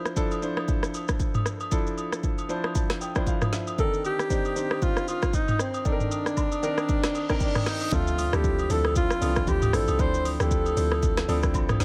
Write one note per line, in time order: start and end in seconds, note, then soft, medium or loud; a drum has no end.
0.00 0.16 F3 medium
0.00 0.16 D4 medium
0.00 0.17 E4 medium
0.00 0.11 C5 loud
0.05 cross-stick medium
0.05 shaker medium
0.16 0.38 F3 medium
0.16 0.38 D4 medium
0.16 0.38 E4 medium
0.16 0.38 A4 loud
0.16 kick medium
0.16 shaker medium
0.31 high agogo medium
0.31 shaker soft
0.42 1.26 F3 medium
0.42 1.26 D4 medium
0.42 1.26 E4 medium
0.42 1.26 C5 loud
0.42 shaker medium
0.57 cross-stick medium
0.57 high agogo medium
0.68 kick loud
0.68 shaker medium
0.83 cross-stick medium
0.83 shaker medium
0.94 high agogo medium
0.94 shaker medium
1.08 kick medium
1.08 cross-stick medium
1.08 shaker soft
1.20 kick loud
1.20 shaker medium
1.34 mid tom medium
1.34 high agogo medium
1.34 shaker soft
1.46 cross-stick medium
1.46 shaker medium
1.60 high agogo medium
1.60 shaker medium
1.71 2.35 F3 medium
1.71 2.35 D4 medium
1.71 2.35 E4 medium
1.71 2.36 A4 loud
1.71 kick loud
1.71 shaker medium
1.87 shaker medium
1.98 high agogo medium
1.98 shaker medium
2.12 cross-stick medium
2.12 shaker medium
2.23 kick medium
2.23 shaker medium
2.38 high agogo medium
2.38 shaker soft
2.49 3.01 F3 medium
2.49 3.01 D4 medium
2.49 3.01 E4 medium
2.49 3.01 C5 loud
2.49 2.73 A5 medium
2.49 shaker medium
2.64 cross-stick medium
2.64 high agogo medium
2.75 2.99 A5 medium
2.75 kick loud
2.75 shaker medium
2.90 cross-stick medium
2.90 snare medium
2.90 shaker medium
3.01 3.25 G5 medium
3.01 high agogo medium
3.01 shaker medium
3.15 3.67 F3 medium
3.15 3.68 D4 medium
3.15 3.68 E4 medium
3.15 3.68 C5 loud
3.15 kick medium
3.15 cross-stick medium
3.15 shaker medium
3.27 3.51 F5 medium
3.27 kick loud
3.27 shaker medium
3.41 cross-stick medium
3.41 mid tom medium
3.41 high agogo medium
3.41 shaker medium
3.53 3.77 E5 medium
3.53 snare medium
3.53 shaker medium
3.67 high agogo medium
3.67 shaker soft
3.78 3.85 D3 medium
3.78 4.21 C4 medium
3.78 4.22 D4 medium
3.78 4.03 A4 loud
3.78 4.22 A#4 medium
3.78 kick loud
3.78 shaker medium
3.84 4.24 D#3 medium
3.94 shaker medium
4.05 4.84 G4 loud
4.05 high agogo medium
4.05 shaker medium
4.19 cross-stick medium
4.19 shaker medium
4.30 4.51 D#3 medium
4.30 4.52 C4 medium
4.30 4.52 D4 medium
4.30 4.52 C5 medium
4.30 kick medium
4.30 shaker medium
4.45 high agogo medium
4.45 shaker soft
4.56 5.39 D#3 medium
4.56 5.40 C4 medium
4.56 5.40 D4 medium
4.56 5.40 C5 medium
4.56 shaker medium
4.71 cross-stick medium
4.71 high agogo medium
4.82 5.08 F4 loud
4.82 kick loud
4.82 shaker medium
4.97 cross-stick medium
4.97 shaker medium
5.08 5.36 F4 medium
5.08 high agogo medium
5.08 shaker medium
5.22 kick medium
5.22 cross-stick medium
5.22 shaker medium
5.33 5.62 D#4 medium
5.33 kick loud
5.33 shaker medium
5.48 mid tom medium
5.48 high agogo medium
5.48 shaker medium
5.59 5.86 C4 medium
5.59 cross-stick medium
5.59 shaker medium
5.74 high agogo medium
5.74 shaker medium
5.85 6.49 D#3 medium
5.85 6.49 C4 medium
5.85 6.49 D4 medium
5.85 7.37 D4 loud
5.85 5.93 A4 medium
5.85 kick loud
5.85 shaker medium
5.92 6.53 A#4 medium
6.00 mid tom medium
6.00 shaker medium
6.11 high agogo medium
6.11 shaker medium
6.26 cross-stick medium
6.26 shaker medium
6.37 kick medium
6.37 low woodblock medium
6.37 shaker medium
6.52 high agogo medium
6.52 shaker medium
6.63 7.14 D#3 medium
6.63 7.15 C4 medium
6.63 7.15 D4 medium
6.63 7.15 A#4 loud
6.63 shaker medium
6.78 cross-stick medium
6.78 high agogo medium
6.78 shaker soft
6.89 kick loud
6.89 reverse cymbal medium
6.89 shaker medium
7.04 cross-stick loud
7.04 snare medium
7.04 shaker medium
7.15 high agogo medium
7.15 shaker medium
7.29 7.81 D#3 medium
7.29 7.81 C4 medium
7.29 7.82 D4 medium
7.29 7.82 A#4 medium
7.29 kick medium
7.29 cross-stick medium
7.29 shaker medium
7.40 7.69 D4 medium
7.40 kick loud
7.40 shaker medium
7.55 cross-stick medium
7.55 mid tom medium
7.55 high agogo medium
7.55 shaker soft
7.66 7.95 D#4 medium
7.66 cross-stick medium
7.66 snare medium
7.66 shaker medium
7.81 high agogo medium
7.81 shaker medium
7.92 8.31 D2 loud
7.92 8.24 F3 medium
7.92 8.24 C4 medium
7.92 8.24 D4 medium
7.92 8.36 F4 loud
7.92 8.24 A4 medium
7.92 8.24 E5 medium
7.92 kick loud
7.92 impact medium
7.92 shaker medium
8.07 shaker medium
8.18 open hi-hat soft
8.18 high agogo medium
8.18 shaker medium
8.33 8.68 D2 loud
8.33 8.63 F3 medium
8.33 8.63 C4 medium
8.33 8.63 D4 medium
8.33 8.63 E4 medium
8.33 8.73 G4 medium
8.33 8.64 A4 medium
8.33 cross-stick loud
8.33 shaker medium
8.44 kick medium
8.44 shaker medium
8.59 high agogo medium
8.59 shaker medium
8.69 9.09 D2 loud
8.69 9.13 F3 medium
8.69 9.13 C4 medium
8.69 9.13 D4 medium
8.69 9.13 E4 medium
8.69 9.13 A4 medium
8.69 8.96 A4 medium
8.69 open hi-hat soft
8.69 shaker medium
8.85 cross-stick medium
8.85 high agogo medium
8.96 9.50 F4 loud
8.96 kick loud
8.96 shaker medium
9.10 cross-stick loud
9.10 shaker medium
9.21 9.46 C2 loud
9.21 9.29 E3 medium
9.21 9.64 C4 medium
9.21 9.65 D4 medium
9.21 9.65 E4 medium
9.21 9.65 A4 medium
9.21 open hi-hat soft
9.21 high agogo medium
9.21 shaker medium
9.27 9.67 F3 medium
9.36 kick medium
9.36 cross-stick medium
9.36 shaker medium
9.47 9.72 D2 medium
9.47 9.76 G4 loud
9.47 kick loud
9.47 low woodblock medium
9.47 shaker medium
9.62 mid tom loud
9.62 high agogo medium
9.62 shaker medium
9.73 9.88 A1 loud
9.73 9.95 F3 medium
9.73 9.95 C4 medium
9.73 9.95 D4 medium
9.73 9.95 E4 medium
9.73 10.02 A4 loud
9.73 9.95 C5 medium
9.73 cross-stick medium
9.73 open hi-hat medium
9.73 shaker medium
9.88 10.01 C2 medium
9.88 high agogo medium
9.88 shaker medium
9.99 10.38 D2 loud
9.99 10.31 F3 medium
9.99 10.31 C4 medium
9.99 10.31 D4 medium
9.99 10.31 E4 medium
9.99 10.31 A4 medium
9.99 10.29 C5 loud
9.99 kick loud
9.99 shaker medium
10.14 shaker medium
10.25 open hi-hat soft
10.25 high agogo medium
10.25 shaker medium
10.40 10.75 D2 loud
10.40 10.70 F3 medium
10.40 10.70 C4 medium
10.40 10.70 D4 medium
10.40 10.70 E4 medium
10.40 10.71 G4 medium
10.40 11.40 A4 loud
10.40 cross-stick loud
10.40 shaker medium
10.51 kick medium
10.51 shaker medium
10.66 high agogo medium
10.66 shaker soft
10.76 11.26 D2 loud
10.76 11.20 F3 medium
10.76 11.20 C4 medium
10.76 11.20 D4 medium
10.76 11.20 E4 medium
10.76 11.20 C5 medium
10.76 open hi-hat medium
10.76 shaker medium
10.92 cross-stick medium
10.92 high agogo medium
11.03 kick loud
11.03 shaker medium
11.17 cross-stick loud
11.17 snare medium
11.17 shaker medium
11.28 11.56 D2 loud
11.28 11.71 F3 medium
11.28 11.71 C4 medium
11.28 11.72 D4 medium
11.28 11.72 E4 medium
11.28 11.72 A4 loud
11.28 open hi-hat soft
11.28 high agogo medium
11.28 shaker medium
11.43 kick medium
11.43 cross-stick medium
11.43 shaker medium
11.54 11.79 C2 loud
11.54 kick loud
11.54 low woodblock medium
11.54 shaker medium
11.69 cross-stick medium
11.69 mid tom loud
11.69 high agogo medium
11.69 shaker medium
11.80 11.85 C2 medium
11.80 11.85 F3 medium
11.80 11.85 C4 medium
11.80 11.85 D4 medium
11.80 11.85 E4 medium
11.80 11.85 C5 loud
11.80 snare medium
11.80 open hi-hat medium
11.80 shaker medium